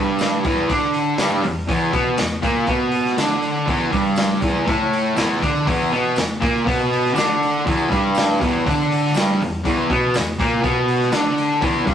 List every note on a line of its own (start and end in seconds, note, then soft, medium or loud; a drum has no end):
0.00 0.44 G2 medium
0.00 0.45 G3 loud
0.19 snare loud
0.19 open hi-hat medium
0.19 tambourine loud
0.44 0.70 E2 medium
0.44 0.70 E3 medium
0.44 kick loud
0.44 open hi-hat medium
0.68 1.19 D3 medium
0.68 1.19 D4 medium
0.68 kick medium
0.68 open hi-hat medium
0.94 open hi-hat medium
1.18 1.43 G2 medium
1.18 1.44 G3 loud
1.18 snare loud
1.18 open hi-hat medium
1.18 tambourine medium
1.43 1.64 E2 medium
1.43 open hi-hat medium
1.68 1.93 E2 medium
1.68 1.94 E3 loud
1.68 kick loud
1.68 open hi-hat medium
1.92 2.18 B2 medium
1.92 2.18 B3 loud
1.92 kick loud
1.92 open hi-hat medium
2.17 2.38 E2 medium
2.17 snare loud
2.17 open hi-hat medium
2.17 tambourine medium
2.42 2.67 A#2 medium
2.42 2.68 A#3 loud
2.42 kick loud
2.42 open hi-hat medium
2.67 3.17 B2 medium
2.67 3.18 B3 loud
2.67 kick loud
2.67 open hi-hat medium
2.92 open hi-hat medium
3.05 snare soft
3.18 3.67 D3 medium
3.18 3.68 D4 loud
3.18 snare loud
3.18 open hi-hat medium
3.18 tambourine medium
3.42 open hi-hat medium
3.66 3.91 E2 medium
3.66 3.92 E3 loud
3.66 kick medium
3.66 open hi-hat medium
3.91 4.41 G2 medium
3.91 4.42 G3 loud
3.91 kick loud
3.91 open hi-hat medium
4.16 snare loud
4.16 open hi-hat medium
4.16 tambourine loud
4.41 4.67 E2 medium
4.41 4.67 E3 medium
4.41 kick loud
4.41 open hi-hat medium
4.65 5.16 A2 medium
4.65 5.16 A3 loud
4.65 kick loud
4.65 open hi-hat medium
4.93 open hi-hat medium
5.14 5.40 E2 medium
5.14 5.41 E3 medium
5.14 snare loud
5.14 open hi-hat medium
5.14 tambourine medium
5.40 5.66 D3 medium
5.40 5.66 D4 medium
5.40 kick loud
5.40 open hi-hat medium
5.65 5.91 E2 loud
5.65 5.91 E3 loud
5.65 kick loud
5.65 open hi-hat medium
5.91 6.16 B2 medium
5.91 6.16 B3 loud
5.91 open hi-hat medium
6.16 6.36 E2 medium
6.16 snare loud
6.16 open hi-hat medium
6.16 tambourine medium
6.40 6.65 A#2 medium
6.40 6.65 A#3 loud
6.40 kick loud
6.40 open hi-hat medium
6.65 7.13 B2 medium
6.65 7.14 B3 medium
6.65 kick loud
6.65 open hi-hat medium
6.93 open hi-hat medium
7.06 snare soft
7.13 7.64 D3 medium
7.13 7.65 D4 medium
7.13 tambourine medium
7.18 snare loud
7.18 open hi-hat medium
7.43 open hi-hat medium
7.65 7.89 E2 loud
7.65 7.90 E3 loud
7.65 kick loud
7.65 open hi-hat medium
7.90 8.39 G2 medium
7.90 8.40 G3 loud
7.90 kick loud
7.90 open hi-hat medium
8.15 snare loud
8.15 open hi-hat medium
8.15 tambourine medium
8.40 8.64 E2 medium
8.40 8.65 E3 loud
8.40 kick loud
8.40 open hi-hat medium
8.65 9.14 D3 loud
8.65 9.15 D4 medium
8.65 kick loud
8.65 open hi-hat medium
8.92 open hi-hat medium
9.06 snare soft
9.14 9.39 G2 medium
9.14 9.40 G3 loud
9.14 snare loud
9.14 open hi-hat medium
9.14 tambourine loud
9.41 9.60 E2 medium
9.41 open hi-hat medium
9.64 9.88 E2 loud
9.64 9.89 E3 loud
9.64 kick loud
9.64 open hi-hat medium
9.90 10.14 B2 medium
9.90 10.14 B3 loud
9.90 kick loud
9.90 open hi-hat medium
10.14 10.34 E2 medium
10.14 snare loud
10.14 open hi-hat medium
10.14 tambourine loud
10.39 10.61 A#2 medium
10.39 10.63 A#3 medium
10.39 kick loud
10.39 open hi-hat medium
10.62 11.11 B2 medium
10.62 11.12 B3 loud
10.62 kick loud
10.62 open hi-hat medium
10.88 open hi-hat medium
11.00 snare soft
11.12 11.61 D3 loud
11.12 11.62 D4 loud
11.12 snare loud
11.12 open hi-hat medium
11.12 tambourine medium
11.38 open hi-hat medium
11.62 11.86 E2 medium
11.62 11.86 E3 loud
11.62 kick loud
11.62 open hi-hat medium
11.86 11.94 G2 medium
11.86 11.94 G3 medium
11.86 kick loud
11.86 open hi-hat medium